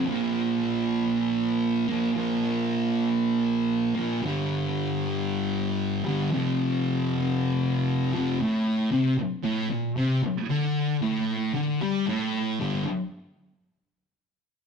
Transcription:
\new Staff \with { instrumentName = "Distorted electric guitar" } { \clef bass \time 4/4 \key a \minor \tempo 4 = 115 <bes, f bes>2.~ <bes, f bes>8 <bes, f bes>8 | <bes, f bes>2.~ <bes, f bes>8 <bes, f bes>8 | <g, d g>2.~ <g, d g>8 <g, d g>8 | <f, c f>2.~ <f, c f>8 <f, c f>8 |
a,4 c8 r8 a,8 bes,8 c8 r8 | d4 a,4 d8 g8 a,4 | <g, d g>8 r2. r8 | }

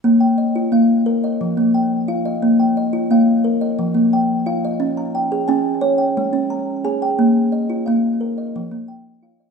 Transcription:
<<
  \new Staff \with { instrumentName = "Kalimba" } { \time 7/8 \key bes \dorian \tempo 4 = 88 << { r16 g''16 ees''8 f''8. ees''8. g''8 f''16 ees''16~ | ees''16 g''16 ees''8 f''8. ees''8. g''8 f''16 ees''16~ | ees''16 bes''16 g''8 aes''8. g''8. bes''8 aes''16 g''16~ | g''16 r16 ees''8 f''8. ees''8. g''8 f''16 ees''16 | } \\ { r8. f'8 r16 bes'8 r16 bes8 r16 f'8 | bes8 r16 f'8 r16 bes'8 r16 bes8 r16 f'8 | des'8 r16 aes'8 r16 des''8 r16 des'8 r16 aes'8 | bes8 r16 f'8 r16 bes'8 r16 bes8 r16 f'8 | } >> }
  \new Staff \with { instrumentName = "Kalimba" } { \time 7/8 \key bes \dorian bes4 bes4 f4. | r4 bes4 f4. | r4 des'4 aes4. | r4 bes4 f4. | }
>>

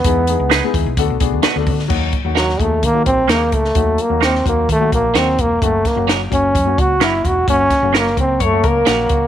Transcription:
<<
  \new Staff \with { instrumentName = "Clean electric guitar" } { \time 4/4 \key dis \phrygian \tempo 4 = 129 r1 | r1 | r1 | r1 |
r2 cis''8 ais'8 fis'4 | }
  \new Staff \with { instrumentName = "Clean electric guitar" } { \time 4/4 \key dis \phrygian r4 <b dis' gis' b'>16 r4. r16 <a d' fis' b'>16 r8. | r4 <ais dis' fis' ais'>16 r4. r16 <ais dis' fis' ais'>16 r8. | r4 <ais dis' fis' ais'>16 r4. r16 <ais dis' fis' ais'>16 r8. | r4 <ais cis' fis' ais'>16 r4. r16 <ais cis' fis' ais'>16 r8. |
r4 <ais cis' fis' ais'>16 r4. r16 <ais cis' fis' ais'>16 r8. | }
  \new Staff \with { instrumentName = "Upright piano" } { \time 4/4 \key dis \phrygian <gis b dis' e' gis'>16 r16 <gis b dis' e' gis'>8 r16 <gis b dis' e' gis'>8 r16 <a b d' fis' a'>16 r16 <a b d' fis' gis'>8 r16 <a b d' fis' a'>8 r16 | <fis ais dis' fis'>8 r16 <fis ais dis' fis'>8 r16 <fis ais dis' gis'>8 r16 <fis ais dis' fis'>8 r16 <fis ais dis' gis'>8. r16 | <fis ais dis' fis'>8 r16 <fis ais dis' fis'>8 r16 <fis ais dis' fis'>8 r16 <fis ais dis' fis'>8 r16 <fis ais dis' fis'>8. r16 | <fis ais cis' fis'>8 r16 <fis ais cis' fis'>8 r16 <fis ais cis' fis'>8 r16 <fis ais cis' fis'>8 r16 <fis ais cis' dis'>8. r16 |
<fis ais cis' fis'>8 r16 <fis ais cis' fis'>8 r16 <fis ais cis' fis'>8 r16 <fis ais cis' fis'>8 r16 <fis ais cis' fis'>8. r16 | }
  \new Staff \with { instrumentName = "Trombone" } { \time 4/4 \key dis \phrygian b4. r2 r8 | r4 fis8 a8 ais8 bis8 ais8 a8~ | a8 ais8 bis8 ais8 a8 ais8 bis8 ais8 | a8 ais8 r8 cis'4 fis'8 e'8 fis'8 |
cis'4 ais8 bis8 a8 ais4. | }
  \new Staff \with { instrumentName = "Fingered electric bass" } { \clef bass \time 4/4 \key dis \phrygian e,8. cis,8 r16 dis,16 b,,16 d,16 b,,16 b,,16 d,16 r16 d,16 d8 | dis,8 r16 dis,8. dis,8 dis8 ais,,8 dis,8 cis,8 | dis,8 r16 dis,8. dis,8 dis8 ais,,8 dis,8 e,,8 | fis,,8 r16 fis,,8. fis,,8 fis,8 cis,8 fis,,8 e,,8 |
fis,,8 r16 fis,,8. cis,8 fis,8 cis,8 ais,,8 cis,8 | }
  \new DrumStaff \with { instrumentName = "Drums" } \drummode { \time 4/4 <hh bd>8 hh8 <hh sn>8 <hh bd>8 <hh bd>8 <hh bd>8 <hh sn>8 <hho bd>16 sn16 | <cymc bd>8 <hh bd>8 <hh sn>16 sn16 <hh bd>8 <hh bd>8 <hh bd>8 <hh sn>8 <hh bd>16 sn16 | <hh bd>8 hh8 <hh sn>16 sn16 <hh bd>8 <hh bd>8 <hh bd>8 <hh sn>8 <hh bd>8 | <hh bd>8 <hh bd sn>8 <hh sn>8 <hh bd>8 <hh bd>8 <hh bd>8 <hh sn>8 <hh bd>8 |
<hh bd>8 <hh bd sn>8 <hh sn>16 sn16 <hh bd>8 <hh bd>8 <hh bd>8 <hh sn>8 <hh bd>8 | }
>>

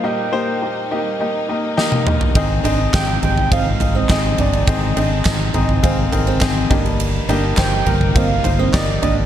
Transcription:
<<
  \new Staff \with { instrumentName = "Soft synth lead" } { \time 4/4 \key ees \major \tempo 4 = 103 g''2 r2 | r4 g''8 g''8 f''8. ees''8. d''8 | ees''2 r2 | r4 g''4 f''8. ees''8. ees''8 | }
  \new Staff \with { instrumentName = "Grand piano" } { \time 4/4 \key ees \major << { r1 | r1 | r4. bes''8 aes''8 g''8 f''8 g''8 | r1 | } \\ { <bes ees' g' ees''>8 <bes ees' g' c''>8 <bes ees' g' ees''>8 <bes ees' g' ees''>8 <bes ees' g' ees''>8 <bes ees' g' ees''>8 <bes ees' g' ees''>8 <bes ees' g' ees''>8 | <c' ees' aes' ees''>8 <c' ees' aes' ees''>8 <c' ees' aes'>8 <c' ees' aes' ees''>8 <c' ees' aes' ees''>8 <c' ees' aes' ees''>8 <c' ees' aes' ees''>8 <c' ees' aes' ees''>8 | <c' ees' aes' ees''>8 <c' ees' aes' ees''>8 <c' ees' aes' ees''>8 <c' ees' aes' ees''>8 <c' ees' aes' f''>8 <c' ees' aes' bes'>8 <c' ees' aes' ees''>8 <bes ees' g' ees''>8~ | <bes ees' g' ees''>8 <bes ees' g' ees''>8 <bes ees' g' c''>8 <bes ees' g' bes'>8 <bes ees' g' ees''>8 <bes ees' g' c''>8 <bes ees' g' d''>8 <bes ees' g' d''>8 | } >> }
  \new Staff \with { instrumentName = "Grand piano" } { \clef bass \time 4/4 \key ees \major bes,4. r2 r8 | <aes, ees>4. r2 r8 | <aes, ees>4. r2 <g, g>8~ | <g, g>4 r2. | }
  \new Staff \with { instrumentName = "Steel-string acoustic guitar" } { \time 4/4 \key ees \major r1 | r8 d'16 r4 r16 c'16 r8 c'16 r8 d'16 r16 | r8 d'16 r4 r16 c'16 r8 c'16 r8 d'16 r16 | r8 d'16 r4 r16 c'16 r8 c'16 r8 d'16 r16 | }
  \new Staff \with { instrumentName = "String section" } { \time 4/4 \key ees \major << { ees'1~ | ees'1~ | ees'2.~ ees'8 ees'8~ | ees'1 | } \\ { <g bes>1 | <aes c'>1~ | <aes c'>2.~ <aes c'>8 <g bes>8~ | <g bes>1 | } >> }
  \new Staff \with { instrumentName = "Fingered electric bass" } { \clef bass \time 4/4 \key ees \major r1 | aes,,8 aes,,8 aes,,8 aes,,8 aes,,8 aes,,8 aes,,8 g,,8 | aes,,8 aes,,8 aes,,8 aes,,8 aes,,8 aes,,8 aes,,8 g,,8~ | g,,8 g,,8 g,,8 g,,8 g,,8 g,,8 g,,8 aes,,8 | }
  \new DrumStaff \with { instrumentName = "Drums" } \drummode { \time 4/4 r4 r4 r4 sn16 tommh16 toml16 tomfh16 | <bd cymr>8 cymr8 <hc bd cymr sn>8 <cymr tomfh>16 tomfh16 <bd cymr>8 <cymr tomfh>8 <hc bd cymr sn>8 <cymr tomfh>16 cymr16 | <bd cymr>8 cymr8 <hc bd cymr sn>8 <cymr tomfh>16 tomfh16 <bd cymr>8 <cymr tomfh>16 cymr16 <hc bd cymr sn>8 <bd cymr tomfh>16 cymr16 | cymr8 cymr8 <hc bd cymr sn>8 <cymr tomfh>16 tomfh16 <bd cymr>8 <cymr tomfh>8 <hc bd cymr sn>8 <cymr tomfh>8 | }
>>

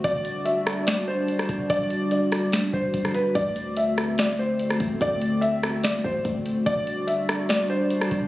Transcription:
<<
  \new Staff \with { instrumentName = "Felt piano" } { \time 4/4 \key d \mixolydian \tempo 4 = 145 d''4 e''4 d''8 c''4. | d''4 d''4. c''4 b'8 | d''4 e''4 d''8 c''4. | d''4 e''4 d''8 c''8 r4 |
d''4 e''4 d''8 c''4. | }
  \new Staff \with { instrumentName = "Analog synth pad" } { \time 4/4 \key d \mixolydian << { <fis' d''>1~ | <fis' d''>1~ | <fis' d''>1~ | <fis' d''>1 |
d''1 | } \\ { <g d'>1~ | <g d'>1 | <d a c'>1~ | <d a c'>1 |
<g d' fis'>1 | } >> }
  \new Staff \with { instrumentName = "808-style bass" } { \clef bass \time 4/4 \key d \mixolydian g,,2.~ g,,8 g,,8 | g,,2~ g,,8 g,,8 g,,4 | d,2.~ d,8 d,8 | d,2~ d,8 d,8 d,8 r8 |
g,,2.~ g,,8 g,,8 | }
  \new DrumStaff \with { instrumentName = "Drums" } \drummode { \time 4/4 <hh bd>8 hh8 hh8 ss8 <hh sn>4 hh16 ss16 <hh bd>8 | <hh bd>8 hh8 hh8 <hho ss>8 <hh sn>8 bd8 <hh bd>16 ss16 hh8 | <hh bd>8 hh8 hh8 ss8 <hh sn>4 hh16 ss16 <hh bd>8 | <hh bd>8 hh8 hh8 ss8 <hh sn>8 bd8 <hh bd>8 hh8 |
<hh bd>8 hh8 hh8 ss8 <hh sn>4 hh16 ss16 <hh bd>8 | }
>>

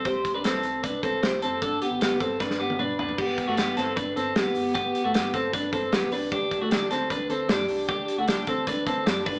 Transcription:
<<
  \new Staff \with { instrumentName = "Clean electric guitar" } { \time 4/4 \key c \lydian \tempo 4 = 153 <g' c''>8. <d' b'>16 <c' a'>4 <d' b'>8 <c' a'>8 <g' c''>8 <c' a'>8 | <d' a'>8 <b g'>8 <b g'>8 <c' a'>8 <d' b'>8 <b g'>8 <d' b'>8 <d' b'>8 | <b g'>8. <a fis'>16 <b g'>8 <c' a'>8 <d' b'>8 <c' a'>8 <b g'>4 | <b g'>8. <a fis'>16 <b g'>8 <c' a'>8 <d' b'>8 <c' a'>8 <b g'>8 <d' b'>8 |
<d' g'>8. <a fis'>16 <d' g'>8 <c' a'>8 <d' b'>8 <c' a'>8 <d' g'>4 | <d' g'>8. <a fis'>16 <d' g'>8 <c' a'>8 <d' b'>8 <c' a'>8 <d' g'>8 <d' b'>8 | }
  \new Staff \with { instrumentName = "Picked electric bass" } { \clef bass \time 4/4 \key c \lydian c,8 r16 c,16 c,8 c,8 c,8 c,8 c,8 fis,,8 | g,,8 r16 g,,16 g,,8 g,,8 g,,8 g,,8 g,,8 fis,,8 | g,,8 r16 g,,16 g,,8 g,,8 g,,8 g,,8 b,,8 fis,,8 | g,,8 r16 g,,16 g,,8 g,,8 g,,8 g,,8 b,,8 c,8 |
d,8 r16 d,16 d,8 d,8 d,8 d,8 fis,8 c,8 | d,8 r16 d,16 d,8 d,8 d,8 d,8 fis,8 g,,8 | }
  \new DrumStaff \with { instrumentName = "Drums" } \drummode { \time 4/4 <hh bd>8 <hh bd>8 <hh sn>8 hh8 <hh bd>8 <hh bd>8 <hh sn>8 hh8 | <hh bd>8 hh8 <hh sn>8 <hh bd>8 <bd sn>16 sn8 tommh16 toml8 tomfh16 tomfh16 | <cymc bd>8 <hh bd>8 <hh sn>8 <hh sn>8 <hh bd>8 hh8 <hh sn>8 hho8 | <hh bd>8 hh8 <hh sn>8 <hh bd>8 <hh bd>8 <hh bd>8 <hh sn>8 hho8 |
<hh bd>8 <hh bd>8 <hh sn>8 <hh sn>8 <hh bd>8 hh8 <hh sn>8 hho8 | <hh bd>8 hh8 <hh sn>8 <hh bd>8 <hh bd>8 <hh bd>8 <hh sn>8 <hho bd>8 | }
>>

